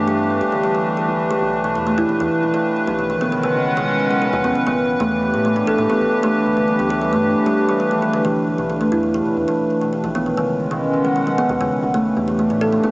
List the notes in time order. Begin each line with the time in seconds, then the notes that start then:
Already playing: G2 E3 A3 D4 G4 B4
0.08 G3
0.41 D1 G4
0.52 D3
0.63 G3
0.75 G3
0.97 G3
1.08 E1
1.31 E3
1.42 B1
1.64 B2
1.75 E2 E3
1.87 A3
1.98 E4
2.09 E1 E3
2.20 E2 E3
2.43 E1
2.54 E3
2.87 B1 D#3 F#3
2.99 B2
3.10 F3
3.15 G#3
3.21 F#1 B3
3.32 B2 F#5
3.43 C#3 C#4
3.55 F#1
3.77 B2
4.11 F#3
4.22 B2
4.33 D#2 F3
4.44 D#2 B3
4.55 B2
4.66 A1 E3 B3
4.91 A3
4.99 E2 A3 G4
5.12 D4
5.34 A2 E3
5.45 A3
5.56 D4
5.67 A1 A4
5.78 A2 A3
5.90 B3
6.01 A1
6.23 A3
6.46 G1
6.57 D3
6.68 G3
6.79 D2 B3
6.90 G4
7.01 G3
7.13 G2 A3
7.46 G3
7.69 G3
7.80 G3
7.91 F3
8.02 G3
8.13 D3
8.25 E1 E3
8.58 B1 B2
8.70 E3
8.81 A3
8.92 E2 E4
9.03 E3
9.14 E3
9.25 E1
9.37 E2
9.48 E3
9.59 E1
9.81 B2
9.93 E3
10.04 B1 D#3 F3
10.15 B3
10.26 B2 G#3
10.37 F#1 C#3 C#4
10.71 F#1 B2
10.84 F#5
11.05 F#3
11.16 B2
11.27 F3
11.38 B3
11.49 D#2 B2
11.60 D#2 C#3
11.83 A1 E3
11.88 A3
11.94 A3
12.02 D4
12.11 G4
12.16 E2
12.28 E3
12.39 A3
12.50 A2 D4
12.61 A4
12.72 A3
12.84 A1 B3